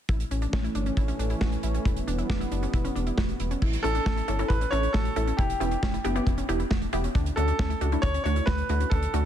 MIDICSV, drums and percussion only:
0, 0, Header, 1, 2, 480
1, 0, Start_track
1, 0, Tempo, 441176
1, 99, Time_signature, 4, 2, 24, 8
1, 10066, End_track
2, 0, Start_track
2, 0, Title_t, "Drums"
2, 95, Note_on_c, 9, 42, 62
2, 96, Note_on_c, 9, 36, 103
2, 203, Note_off_c, 9, 42, 0
2, 205, Note_off_c, 9, 36, 0
2, 217, Note_on_c, 9, 42, 58
2, 326, Note_off_c, 9, 42, 0
2, 338, Note_on_c, 9, 42, 66
2, 447, Note_off_c, 9, 42, 0
2, 454, Note_on_c, 9, 42, 44
2, 563, Note_off_c, 9, 42, 0
2, 577, Note_on_c, 9, 36, 111
2, 579, Note_on_c, 9, 38, 108
2, 686, Note_off_c, 9, 36, 0
2, 687, Note_off_c, 9, 38, 0
2, 701, Note_on_c, 9, 42, 50
2, 810, Note_off_c, 9, 42, 0
2, 816, Note_on_c, 9, 42, 65
2, 924, Note_off_c, 9, 42, 0
2, 936, Note_on_c, 9, 42, 42
2, 1044, Note_off_c, 9, 42, 0
2, 1054, Note_on_c, 9, 42, 67
2, 1055, Note_on_c, 9, 36, 99
2, 1163, Note_off_c, 9, 36, 0
2, 1163, Note_off_c, 9, 42, 0
2, 1176, Note_on_c, 9, 42, 52
2, 1285, Note_off_c, 9, 42, 0
2, 1300, Note_on_c, 9, 42, 61
2, 1409, Note_off_c, 9, 42, 0
2, 1413, Note_on_c, 9, 42, 44
2, 1521, Note_off_c, 9, 42, 0
2, 1533, Note_on_c, 9, 38, 110
2, 1537, Note_on_c, 9, 36, 95
2, 1642, Note_off_c, 9, 38, 0
2, 1646, Note_off_c, 9, 36, 0
2, 1654, Note_on_c, 9, 42, 44
2, 1763, Note_off_c, 9, 42, 0
2, 1775, Note_on_c, 9, 42, 69
2, 1884, Note_off_c, 9, 42, 0
2, 1899, Note_on_c, 9, 42, 51
2, 2007, Note_off_c, 9, 42, 0
2, 2018, Note_on_c, 9, 36, 106
2, 2018, Note_on_c, 9, 42, 64
2, 2127, Note_off_c, 9, 36, 0
2, 2127, Note_off_c, 9, 42, 0
2, 2139, Note_on_c, 9, 42, 58
2, 2247, Note_off_c, 9, 42, 0
2, 2261, Note_on_c, 9, 42, 69
2, 2370, Note_off_c, 9, 42, 0
2, 2376, Note_on_c, 9, 42, 44
2, 2485, Note_off_c, 9, 42, 0
2, 2499, Note_on_c, 9, 36, 108
2, 2500, Note_on_c, 9, 38, 108
2, 2608, Note_off_c, 9, 36, 0
2, 2609, Note_off_c, 9, 38, 0
2, 2623, Note_on_c, 9, 42, 51
2, 2732, Note_off_c, 9, 42, 0
2, 2738, Note_on_c, 9, 42, 63
2, 2847, Note_off_c, 9, 42, 0
2, 2859, Note_on_c, 9, 42, 45
2, 2968, Note_off_c, 9, 42, 0
2, 2977, Note_on_c, 9, 36, 99
2, 2977, Note_on_c, 9, 42, 68
2, 3085, Note_off_c, 9, 36, 0
2, 3086, Note_off_c, 9, 42, 0
2, 3099, Note_on_c, 9, 42, 53
2, 3208, Note_off_c, 9, 42, 0
2, 3223, Note_on_c, 9, 42, 61
2, 3332, Note_off_c, 9, 42, 0
2, 3336, Note_on_c, 9, 42, 43
2, 3445, Note_off_c, 9, 42, 0
2, 3455, Note_on_c, 9, 38, 116
2, 3459, Note_on_c, 9, 36, 98
2, 3564, Note_off_c, 9, 38, 0
2, 3568, Note_off_c, 9, 36, 0
2, 3576, Note_on_c, 9, 42, 44
2, 3685, Note_off_c, 9, 42, 0
2, 3696, Note_on_c, 9, 42, 72
2, 3805, Note_off_c, 9, 42, 0
2, 3819, Note_on_c, 9, 42, 49
2, 3927, Note_off_c, 9, 42, 0
2, 3939, Note_on_c, 9, 36, 105
2, 3939, Note_on_c, 9, 49, 81
2, 4047, Note_off_c, 9, 36, 0
2, 4048, Note_off_c, 9, 49, 0
2, 4060, Note_on_c, 9, 42, 61
2, 4169, Note_off_c, 9, 42, 0
2, 4183, Note_on_c, 9, 42, 66
2, 4291, Note_off_c, 9, 42, 0
2, 4295, Note_on_c, 9, 42, 46
2, 4404, Note_off_c, 9, 42, 0
2, 4419, Note_on_c, 9, 36, 112
2, 4419, Note_on_c, 9, 38, 112
2, 4528, Note_off_c, 9, 36, 0
2, 4528, Note_off_c, 9, 38, 0
2, 4542, Note_on_c, 9, 42, 51
2, 4650, Note_off_c, 9, 42, 0
2, 4657, Note_on_c, 9, 42, 66
2, 4766, Note_off_c, 9, 42, 0
2, 4776, Note_on_c, 9, 42, 44
2, 4884, Note_off_c, 9, 42, 0
2, 4895, Note_on_c, 9, 42, 72
2, 4896, Note_on_c, 9, 36, 106
2, 5004, Note_off_c, 9, 42, 0
2, 5005, Note_off_c, 9, 36, 0
2, 5018, Note_on_c, 9, 42, 53
2, 5127, Note_off_c, 9, 42, 0
2, 5142, Note_on_c, 9, 42, 65
2, 5251, Note_off_c, 9, 42, 0
2, 5257, Note_on_c, 9, 42, 45
2, 5366, Note_off_c, 9, 42, 0
2, 5376, Note_on_c, 9, 38, 112
2, 5379, Note_on_c, 9, 36, 98
2, 5484, Note_off_c, 9, 38, 0
2, 5488, Note_off_c, 9, 36, 0
2, 5496, Note_on_c, 9, 42, 45
2, 5605, Note_off_c, 9, 42, 0
2, 5617, Note_on_c, 9, 42, 68
2, 5726, Note_off_c, 9, 42, 0
2, 5740, Note_on_c, 9, 42, 49
2, 5848, Note_off_c, 9, 42, 0
2, 5860, Note_on_c, 9, 36, 106
2, 5860, Note_on_c, 9, 42, 64
2, 5969, Note_off_c, 9, 36, 0
2, 5969, Note_off_c, 9, 42, 0
2, 5981, Note_on_c, 9, 42, 60
2, 6090, Note_off_c, 9, 42, 0
2, 6103, Note_on_c, 9, 42, 68
2, 6212, Note_off_c, 9, 42, 0
2, 6217, Note_on_c, 9, 42, 45
2, 6326, Note_off_c, 9, 42, 0
2, 6340, Note_on_c, 9, 36, 108
2, 6342, Note_on_c, 9, 38, 113
2, 6449, Note_off_c, 9, 36, 0
2, 6451, Note_off_c, 9, 38, 0
2, 6463, Note_on_c, 9, 42, 52
2, 6572, Note_off_c, 9, 42, 0
2, 6579, Note_on_c, 9, 42, 66
2, 6688, Note_off_c, 9, 42, 0
2, 6699, Note_on_c, 9, 42, 45
2, 6808, Note_off_c, 9, 42, 0
2, 6818, Note_on_c, 9, 36, 100
2, 6819, Note_on_c, 9, 42, 70
2, 6927, Note_off_c, 9, 36, 0
2, 6927, Note_off_c, 9, 42, 0
2, 6939, Note_on_c, 9, 42, 55
2, 7048, Note_off_c, 9, 42, 0
2, 7063, Note_on_c, 9, 42, 64
2, 7171, Note_off_c, 9, 42, 0
2, 7177, Note_on_c, 9, 42, 43
2, 7286, Note_off_c, 9, 42, 0
2, 7296, Note_on_c, 9, 38, 112
2, 7300, Note_on_c, 9, 36, 99
2, 7405, Note_off_c, 9, 38, 0
2, 7409, Note_off_c, 9, 36, 0
2, 7416, Note_on_c, 9, 42, 45
2, 7525, Note_off_c, 9, 42, 0
2, 7537, Note_on_c, 9, 42, 71
2, 7645, Note_off_c, 9, 42, 0
2, 7659, Note_on_c, 9, 42, 52
2, 7768, Note_off_c, 9, 42, 0
2, 7779, Note_on_c, 9, 42, 64
2, 7780, Note_on_c, 9, 36, 108
2, 7888, Note_off_c, 9, 36, 0
2, 7888, Note_off_c, 9, 42, 0
2, 7900, Note_on_c, 9, 42, 60
2, 8009, Note_off_c, 9, 42, 0
2, 8022, Note_on_c, 9, 42, 69
2, 8131, Note_off_c, 9, 42, 0
2, 8137, Note_on_c, 9, 42, 48
2, 8245, Note_off_c, 9, 42, 0
2, 8260, Note_on_c, 9, 36, 114
2, 8261, Note_on_c, 9, 38, 112
2, 8369, Note_off_c, 9, 36, 0
2, 8369, Note_off_c, 9, 38, 0
2, 8382, Note_on_c, 9, 42, 51
2, 8490, Note_off_c, 9, 42, 0
2, 8500, Note_on_c, 9, 42, 67
2, 8608, Note_off_c, 9, 42, 0
2, 8619, Note_on_c, 9, 42, 43
2, 8728, Note_off_c, 9, 42, 0
2, 8738, Note_on_c, 9, 36, 103
2, 8739, Note_on_c, 9, 42, 73
2, 8846, Note_off_c, 9, 36, 0
2, 8848, Note_off_c, 9, 42, 0
2, 8860, Note_on_c, 9, 42, 57
2, 8969, Note_off_c, 9, 42, 0
2, 8983, Note_on_c, 9, 42, 64
2, 9092, Note_off_c, 9, 42, 0
2, 9095, Note_on_c, 9, 42, 43
2, 9204, Note_off_c, 9, 42, 0
2, 9215, Note_on_c, 9, 38, 112
2, 9220, Note_on_c, 9, 36, 102
2, 9324, Note_off_c, 9, 38, 0
2, 9328, Note_off_c, 9, 36, 0
2, 9336, Note_on_c, 9, 42, 44
2, 9445, Note_off_c, 9, 42, 0
2, 9457, Note_on_c, 9, 42, 72
2, 9566, Note_off_c, 9, 42, 0
2, 9579, Note_on_c, 9, 42, 52
2, 9688, Note_off_c, 9, 42, 0
2, 9699, Note_on_c, 9, 36, 112
2, 9699, Note_on_c, 9, 42, 67
2, 9808, Note_off_c, 9, 36, 0
2, 9808, Note_off_c, 9, 42, 0
2, 9819, Note_on_c, 9, 42, 62
2, 9928, Note_off_c, 9, 42, 0
2, 9942, Note_on_c, 9, 42, 69
2, 10051, Note_off_c, 9, 42, 0
2, 10066, End_track
0, 0, End_of_file